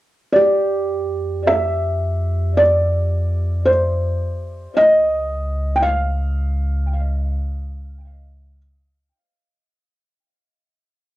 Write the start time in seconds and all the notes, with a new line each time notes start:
0.33 F2 G4 D5
1.47 E5
2.57 D5
3.65 C5
4.73 C#2 D#5
5.76 G5
5.82 F5